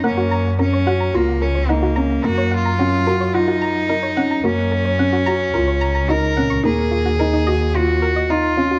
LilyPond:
<<
  \new Staff \with { instrumentName = "Synth arpeggio sound" } { \time 4/4 \key fis \major \tempo 4 = 109 fis''16 fis'16 ais''16 r16 ais'16 cis''16 fis''16 ais''16 fis'16 r16 ais'16 cis''16 fis''16 fis'16 ais''16 r16 | ais'16 cis''16 fis''16 ais''16 fis'16 r16 ais'16 cis''16 fis''16 fis'16 ais''16 r16 ais'16 cis''16 fis''16 ais''16 | fis'16 r16 ais'16 cis''16 fis''16 fis'16 ais''16 r16 ais'16 cis''16 ais''16 ais''16 fis'16 r16 fis''16 cis'''16 | dis'16 r16 eis'16 fis'16 ais'16 dis'16 dis''16 r16 eis'16 fis'16 ais'16 dis''16 dis'16 r16 eis'16 fis'16 | }
  \new Staff \with { instrumentName = "Cello" } { \time 4/4 \key fis \major cis'4 cis'4 ais8 cis'8 ais4 | fis'8 eis'4. dis'2 | cis'2. ais'4 | gis'2 fis'4 eis'4 | }
  \new Staff \with { instrumentName = "Felt piano" } { \time 4/4 \key fis \major ais4 cis'8 fis'8 eis'4 dis'8 cis'8 | ais4 cis'8 fis'8 eis'4 dis'8 cis'8 | ais4 cis'8 fis'8 eis'4 dis'8 cis'8 | ais4 dis'8 fis'8 eis'4 dis'8 cis'8 | }
  \new Staff \with { instrumentName = "Double bass section" } { \clef bass \time 4/4 \key fis \major fis,4.~ fis,16 r16 cis,4.~ cis,16 r16 | fis,2.~ fis,8. r16 | fis,4.~ fis,16 r16 cis,4. ais,16 cis,16 | dis,2.~ dis,8. r16 | }
>>